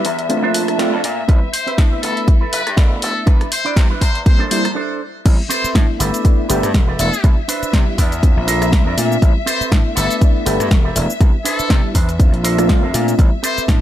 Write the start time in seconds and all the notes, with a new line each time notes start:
Already playing: E5
0.05 E2, open hi-hat
0.18 muted clean electric guitar stroke, closed hi-hat
0.29 A3 C4 D4 F4, closed hi-hat
0.43 A#1 D4 A4 C5
0.54 A5, open hi-hat
0.68 cross-stick, closed hi-hat
0.78 A3 C4 D4 F4 A4 D5 E5, snare, closed hi-hat
0.93 F2
1.04 A#2, open hi-hat
1.28 A1 G3 B3 C4 E4 G4 B4, kick, closed hi-hat
1.53 C5, open hi-hat
1.67 C4 G4 B4, muted slap bass stroke, closed hi-hat
1.78 A2 A3 B3 D4 E4, kick, snare, closed hi-hat
1.91 C4 G4 B4
2.02 G1 E4 A4 B4, open hi-hat
2.17 closed hi-hat
2.27 G3 B3 E4, kick, closed hi-hat
2.41 E4 A4 B4
2.53 G1 B4, open hi-hat
2.67 G2, cross-stick, closed hi-hat
2.77 A3 B3 D4 E4 A4 D5, kick, snare, closed hi-hat
3.02 E1 A4, open hi-hat
3.26 C2 G3 B3 C4 D4 E4 B4, kick, closed hi-hat
3.41 cross-stick, closed hi-hat
3.52 C5, open hi-hat
3.65 D4 E4 D5, muted slap bass stroke, closed hi-hat
3.77 C3 G3 B3 C4 E4, kick, snare, closed hi-hat
3.90 D4 E4 B4
4.01 E2 C5, kick, open hi-hat
4.15 muted clean electric guitar stroke, closed hi-hat
4.26 G3 A#3 C4 E4 C5, kick, closed hi-hat
4.39 A#1 D4 A4 C5
4.51 G3 A#3 C4 E4 C5, open hi-hat
4.65 cross-stick, closed hi-hat
4.75 D4 A4 C5
5.26 A1 G3 B3 C4 E4 E5, kick, closed hi-hat, crash, shaker
5.49 C4 G4 A4 B4 C5, open hi-hat, shaker
5.64 muted slap bass stroke, closed hi-hat, shaker
5.75 A2 A3 B3 D4 E4, kick, snare, closed hi-hat, shaker
5.99 G1 E4 G4 A4 B4, open hi-hat, shaker
6.14 closed hi-hat, shaker
6.25 A3 B3 D4 E4, kick, closed hi-hat, shaker
6.49 G1 A3 B3 D4 E4 G4 A4 B4, open hi-hat, shaker
6.63 G2, cross-stick, closed hi-hat, shaker
6.74 E1, kick, snare, closed hi-hat, shaker
6.88 E4 G4 A4 B4
6.99 E1 A3 B3 D4 E4 A4, open hi-hat, shaker
7.12 muted clean electric guitar stroke, shaker
7.24 C2 G3 B3 D4 E4, kick, closed hi-hat, shaker
7.48 D4 E4 B4 C5, open hi-hat, shaker
7.63 muted slap bass stroke, closed hi-hat, shaker
7.73 C3 G3 B3 D4 E4, kick, snare, closed hi-hat, shaker
7.98 E2 D4 E4 B4 D5, kick, open hi-hat, shaker
8.12 closed hi-hat, shaker
8.23 C4 D4 F4, kick, closed hi-hat, shaker
8.37 A#1
8.47 D4 A4 A#4 C5, open hi-hat, shaker
8.62 cross-stick, closed hi-hat, shaker
8.73 kick, snare, closed hi-hat, shaker
8.86 F2 D4 A4 A#4 D5
8.97 A#2 A3 C4 D4 F4, open hi-hat, shaker
9.11 muted clean electric guitar stroke, shaker
9.22 A1 G3 B3 C4 E4, kick, closed hi-hat, shaker
9.46 C4 G4 A4 B4 C5, open hi-hat, shaker
9.61 muted slap bass stroke, closed hi-hat, shaker
9.72 A2 A3 B3 D4 E4, kick, snare, closed hi-hat, shaker
9.96 G1 E4 G4 A4 B4, open hi-hat, shaker
10.11 closed hi-hat, shaker
10.21 A3 B3 D4 E4, kick, closed hi-hat, shaker
10.46 G1 A3 B3 D4 E4 G4 A4 B4, open hi-hat, shaker
10.60 G2, cross-stick, closed hi-hat, shaker
10.71 E1, kick, snare, closed hi-hat, shaker
10.84 E4 G4 A4 B4
10.95 E1 A3 B3 D4 E4, open hi-hat, shaker
11.09 muted clean electric guitar stroke, shaker
11.20 C2 G3 B3 D4 E4, kick, closed hi-hat, shaker
11.45 D4 E4 A4 B4 C5, open hi-hat, shaker
11.59 muted slap bass stroke, closed hi-hat, shaker
11.69 C3 G3 B3 D4 E4, kick, snare, closed hi-hat, shaker
11.94 E2 D4 E4 B4 C5, kick, open hi-hat, shaker
12.09 closed hi-hat, shaker
12.19 C4 D4 F4, muted clean electric guitar stroke, kick, closed hi-hat, shaker
12.34 A#1, closed hi-hat
12.44 D4 A4 A#4 C5, open hi-hat, shaker
12.58 A3 C4 D4 F4, cross-stick, closed hi-hat, shaker
12.68 A3 C4 D4 F4, kick, snare, closed hi-hat, shaker
12.82 F2 D4 A4 A#4 C5
12.94 A#2 A3 C4 D4 F4, open hi-hat, shaker
13.07 muted clean electric guitar stroke, closed hi-hat, shaker
13.18 A1 G3 B3 C4 E4 E5, kick, closed hi-hat, shaker
13.43 C4 G4 A4 B4 C5, open hi-hat, shaker
13.58 muted slap bass stroke, closed hi-hat, shaker
13.68 A2 A3 B3 D4 E4, kick, snare, closed hi-hat, shaker